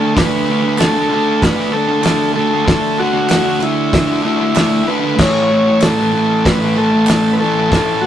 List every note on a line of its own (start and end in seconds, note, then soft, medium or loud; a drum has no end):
0.00 0.14 D3 medium
0.00 0.19 D4 medium
0.00 0.14 A4 medium
0.04 0.17 A3 medium
0.15 0.46 D3 loud
0.15 0.48 A3 loud
0.15 0.81 B4 loud
0.15 kick loud
0.15 snare loud
0.15 open hi-hat medium
0.19 0.51 D4 loud
0.46 0.77 D3 medium
0.46 0.67 A3 medium
0.51 0.62 D4 medium
0.62 0.82 D4 medium
0.67 0.80 A3 medium
0.78 1.09 D3 medium
0.78 0.97 A3 loud
0.78 1.44 A4 loud
0.78 snare loud
0.78 clap loud
0.78 open hi-hat medium
0.82 0.93 D4 loud
0.93 1.14 D4 medium
0.98 1.12 A3 medium
1.09 1.70 D3 medium
1.09 1.60 A3 medium
1.14 1.54 D4 medium
1.42 1.74 B4 loud
1.42 kick loud
1.42 snare loud
1.42 open hi-hat medium
1.56 1.75 D4 medium
1.60 1.74 A3 medium
1.71 2.00 D3 medium
1.71 1.91 A3 medium
1.71 2.32 A4 loud
1.76 1.86 D4 medium
1.87 2.05 D4 medium
1.92 2.04 A3 medium
2.02 2.32 D3 medium
2.02 2.35 A3 medium
2.02 clap loud
2.02 open hi-hat medium
2.06 2.36 D4 loud
2.06 snare loud
2.33 2.64 D3 medium
2.33 2.53 A3 medium
2.33 3.01 A4 loud
2.38 2.48 D4 medium
2.49 2.69 D4 medium
2.53 2.67 A3 medium
2.65 2.96 D3 loud
2.65 3.00 A3 loud
2.65 kick loud
2.65 snare loud
2.65 open hi-hat medium
2.70 3.01 D4 loud
2.98 3.26 D3 medium
2.98 3.17 A3 medium
2.98 3.64 F#4 loud
3.02 3.11 D4 medium
3.13 3.31 D4 medium
3.18 3.30 A3 medium
3.28 3.58 D3 medium
3.28 3.48 A3 loud
3.28 snare loud
3.28 clap loud
3.28 open hi-hat medium
3.32 3.42 D4 loud
3.43 3.63 D4 medium
3.49 3.62 A3 medium
3.59 4.21 D3 medium
3.59 4.11 A3 medium
3.59 4.21 E4 medium
3.59 clap medium
3.64 4.05 D4 medium
3.93 kick loud
3.93 snare loud
3.93 open hi-hat medium
4.07 4.26 D4 medium
4.11 4.24 A3 medium
4.22 4.52 D3 medium
4.22 4.42 A3 medium
4.22 4.90 E4 medium
4.27 4.36 D4 medium
4.37 4.57 D4 medium
4.42 4.56 A3 medium
4.53 4.83 D3 medium
4.53 4.87 A3 medium
4.53 snare loud
4.53 clap loud
4.53 open hi-hat medium
4.58 4.89 D4 loud
4.84 5.15 D3 medium
4.84 5.04 A3 medium
4.84 5.20 B4 loud
4.90 4.99 D4 medium
5.00 5.16 D4 medium
5.04 5.17 A3 medium
5.15 5.47 A2 loud
5.15 5.50 E3 loud
5.15 kick loud
5.15 crash loud
5.19 5.51 A3 loud
5.19 5.85 C#5 loud
5.19 snare loud
5.47 5.80 A2 medium
5.47 5.68 E3 medium
5.52 5.63 A3 medium
5.63 5.84 A3 medium
5.68 5.82 E3 medium
5.80 6.11 A2 loud
5.80 5.99 E3 loud
5.80 6.47 A4 loud
5.80 snare loud
5.80 clap loud
5.80 open hi-hat medium
5.84 5.95 A3 loud
5.96 6.16 A3 medium
6.00 6.13 E3 medium
6.12 6.73 A2 medium
6.12 6.63 E3 medium
6.16 6.59 A3 medium
6.45 6.77 B4 loud
6.45 kick loud
6.45 snare loud
6.45 open hi-hat medium
6.59 6.79 A3 medium
6.64 6.76 E3 medium
6.75 7.06 A2 medium
6.75 6.94 E3 medium
6.75 7.35 A4 loud
6.79 6.91 A3 medium
6.91 7.11 A3 medium
6.95 7.09 E3 medium
7.07 7.38 A2 medium
7.07 7.40 E3 medium
7.07 snare loud
7.07 clap loud
7.07 open hi-hat medium
7.11 7.43 A3 medium
7.33 7.40 B4 medium
7.39 7.69 A2 medium
7.39 7.58 E3 medium
7.39 8.04 A4 loud
7.43 7.54 A3 medium
7.54 7.75 A3 medium
7.59 7.72 E3 medium
7.70 8.01 A2 loud
7.70 8.03 E3 loud
7.70 kick loud
7.70 snare loud
7.70 open hi-hat medium
7.75 8.06 A3 loud
8.02 8.07 A2 medium
8.02 8.07 F#4 loud